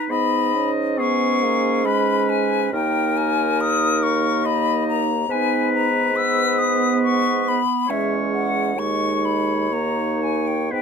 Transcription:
0.00 0.12 B4 soft
0.09 2.69 G#2 medium
0.09 0.56 B3 soft
0.09 1.00 D#4 soft
0.09 1.00 D#5 medium
0.09 0.70 B5 medium
0.55 1.01 C#4 soft
0.98 1.45 B3 medium
0.98 2.73 C#4 medium
0.98 1.88 G#4 medium
0.98 1.86 C#6 medium
1.43 1.87 A#3 medium
1.85 2.72 G#3 soft
1.85 2.72 B4 medium
1.85 2.31 B5 medium
2.29 2.73 G#5 medium
2.73 5.25 D#2 medium
2.73 5.25 A#3 soft
2.73 4.42 D#4 medium
2.73 4.46 A#4 medium
2.73 3.19 G5 medium
3.17 3.62 G#5 medium
3.60 4.04 D#6 medium
4.03 4.47 C#6 medium
4.45 5.14 D#4 soft
4.45 5.13 D#5 soft
4.45 4.87 B5 medium
4.88 5.33 A#5 medium
5.28 7.58 G#2 medium
5.28 6.13 B3 soft
5.28 5.89 D#4 soft
5.28 7.59 B4 medium
5.28 5.73 G#5 medium
5.74 6.18 A#5 medium
6.14 7.60 B3 medium
6.14 7.85 B3 medium
6.14 6.60 E6 medium
6.58 7.02 D#6 medium
7.03 7.50 C#6 medium
7.48 7.92 B5 medium
7.88 8.77 E2 medium
7.88 8.72 G#3 soft
7.88 8.78 C#4 soft
7.88 8.72 C#5 medium
7.88 8.14 E5 medium
8.34 8.80 F#5 medium
8.76 10.73 D#2 soft
8.76 9.69 G#3 soft
8.76 9.70 D#4 soft
8.76 10.73 C#5 soft
8.76 9.26 C#6 medium
9.25 9.74 B5 medium
9.71 10.74 A#3 soft
9.71 10.70 D#4 soft
9.71 10.24 A#5 medium
10.23 10.49 G#5 medium
10.47 10.73 G5 soft
10.71 10.82 G#2 soft
10.71 10.82 B3 soft
10.71 10.82 D#4 soft
10.71 10.82 B4 soft
10.71 10.82 G5 medium

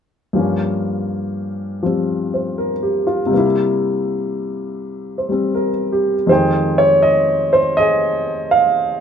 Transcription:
0.33 3.31 G2 soft
0.33 1.81 F3 soft
0.33 3.32 A#3 soft
0.38 3.34 C#4 soft
1.83 3.32 F3 soft
1.83 3.29 G3 soft
1.83 3.33 C4 soft
2.34 2.72 C5 soft
2.58 3.04 A#4 soft
2.83 3.21 G4 soft
3.07 3.45 F4 soft
3.26 6.26 C3 soft
3.26 5.27 G3 soft
3.34 6.30 A#3 soft
3.34 6.32 E4 soft
5.18 5.70 C5 soft
5.29 6.29 G3 soft
5.29 6.30 C4 soft
5.55 6.13 A#4 soft
5.92 6.44 G4 soft
6.27 9.00 F2 soft
6.27 9.00 D#3 soft
6.27 9.00 G#3 soft
6.27 6.80 C5 medium
6.31 7.75 G#4 soft
6.31 9.00 G5 medium
6.78 7.04 C#5 medium
7.02 7.49 D#5 medium
7.53 7.58 C5 medium
7.77 9.00 G#4 medium
7.77 8.54 D#5 medium
8.51 9.00 F5 medium

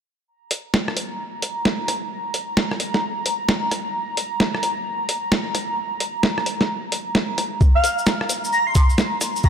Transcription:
0.28 7.60 A#5 medium
0.51 closed hi-hat loud
0.74 snare loud
0.88 cross-stick medium
0.97 closed hi-hat medium
1.42 closed hi-hat loud
1.65 snare loud
1.88 cross-stick soft
1.88 closed hi-hat medium
2.34 closed hi-hat medium
2.57 snare loud
2.71 cross-stick medium
2.80 closed hi-hat medium
2.94 snare medium
3.26 closed hi-hat loud
3.49 snare loud
3.71 cross-stick soft
3.71 closed hi-hat medium
4.17 closed hi-hat medium
4.40 snare loud
4.55 cross-stick medium
4.63 closed hi-hat medium
5.09 closed hi-hat loud
5.32 snare loud
5.55 cross-stick soft
5.55 closed hi-hat medium
6.00 closed hi-hat medium
6.23 snare loud
6.38 cross-stick medium
6.46 closed hi-hat medium
6.61 snare medium
6.92 closed hi-hat medium
7.15 snare loud
7.38 cross-stick soft
7.38 closed hi-hat medium
7.61 9.49 A#5 medium
7.61 kick loud
7.61 shaker soft
7.75 7.88 F5 medium
7.84 closed hi-hat medium
7.84 shaker medium
7.99 shaker soft
8.06 snare loud
8.06 shaker soft
8.21 cross-stick medium
8.29 closed hi-hat medium
8.29 shaker medium
8.45 shaker medium
8.52 8.64 A#5 medium
8.52 shaker soft
8.67 8.72 C6 medium
8.75 8.85 C6 medium
8.75 kick loud
8.75 closed hi-hat loud
8.75 shaker medium
8.90 shaker soft
8.98 snare loud
8.98 shaker soft
9.21 cross-stick soft
9.21 closed hi-hat medium
9.21 shaker medium
9.36 shaker medium
9.43 9.49 A#5 medium
9.43 kick loud
9.43 shaker soft

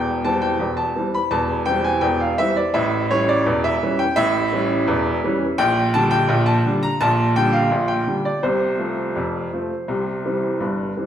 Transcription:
0.00 0.18 E1 medium
0.00 0.18 E2 medium
0.00 0.23 G5 medium
0.25 0.44 E3 soft
0.25 0.44 G3 soft
0.25 0.44 C4 medium
0.25 0.42 A5 medium
0.42 0.77 G5 medium
0.59 0.90 E1 medium
0.59 0.90 E2 medium
0.77 1.13 A5 medium
0.96 1.15 E3 soft
0.96 1.16 G3 soft
0.96 1.16 C4 medium
1.14 1.32 B5 medium
1.31 1.61 E1 medium
1.31 1.61 E2 medium
1.31 1.67 A5 medium
1.66 1.86 E3 soft
1.66 1.86 G3 soft
1.66 1.87 C4 medium
1.66 1.84 G5 loud
1.84 2.02 G#5 medium
2.01 2.32 E1 medium
2.01 2.32 E2 medium
2.01 2.20 G5 medium
2.20 2.38 F5 medium
2.38 2.58 E3 medium
2.38 2.58 G3 medium
2.38 2.59 C4 medium
2.38 2.56 E5 loud
2.56 2.74 D5 medium
2.74 3.04 A1 medium
2.74 3.04 A2 medium
2.74 3.09 E5 medium
3.11 3.30 E3 soft
3.11 3.31 G3 soft
3.11 3.31 C#4 medium
3.11 3.28 C#5 medium
3.29 3.64 D5 medium
3.46 3.76 E1 medium
3.46 3.76 E2 medium
3.64 3.99 E5 medium
3.83 4.02 E3 medium
3.83 4.02 G3 medium
3.83 4.02 C#4 medium
3.99 4.16 G5 loud
4.16 4.47 A1 medium
4.16 4.47 A2 medium
4.16 5.58 E5 loud
4.53 4.72 E3 medium
4.53 4.72 G3 medium
4.53 4.72 C#4 medium
4.88 5.18 E1 medium
4.88 5.17 E2 medium
5.24 5.43 E3 medium
5.24 5.43 G3 medium
5.24 5.44 C#4 medium
5.58 5.88 A#1 medium
5.58 5.89 A#2 medium
5.58 5.93 G5 loud
5.94 6.14 D3 medium
5.94 6.14 G3 medium
5.94 6.14 D4 medium
5.94 6.11 A5 loud
6.11 6.46 G5 loud
6.29 6.59 A#1 loud
6.29 6.59 A#2 medium
6.46 6.82 A5 loud
6.65 6.84 D3 medium
6.65 6.85 G3 medium
6.65 6.85 D4 medium
6.83 7.00 A#5 loud
7.01 7.31 A#1 medium
7.01 7.31 A#2 medium
7.01 7.36 A5 loud
7.36 7.55 D3 medium
7.36 7.56 G3 medium
7.36 7.56 D4 medium
7.36 7.54 G5 loud
7.52 7.89 F5 medium
7.71 8.02 A#1 medium
7.71 8.02 A#2 medium
7.88 8.24 G5 medium
8.06 8.26 D3 soft
8.06 8.27 G3 soft
8.06 8.27 D4 soft
8.25 8.43 D5 medium
8.43 8.74 C2 medium
8.43 8.74 C3 medium
8.43 10.59 C5 medium
8.78 8.98 F3 soft
8.78 8.99 A3 soft
8.78 8.99 C4 soft
9.16 9.46 F1 medium
9.16 9.46 F2 medium
9.53 9.72 F3 soft
9.53 9.72 A3 soft
9.53 9.73 C4 soft
9.88 10.18 C2 medium
9.88 10.18 C3 medium
10.25 10.44 E3 soft
10.25 10.45 G3 soft
10.25 10.45 C4 soft
10.60 10.90 G1 medium
10.60 10.90 G2 medium
10.97 11.06 E3 soft
10.97 11.06 G3 soft
10.97 11.06 C4 soft

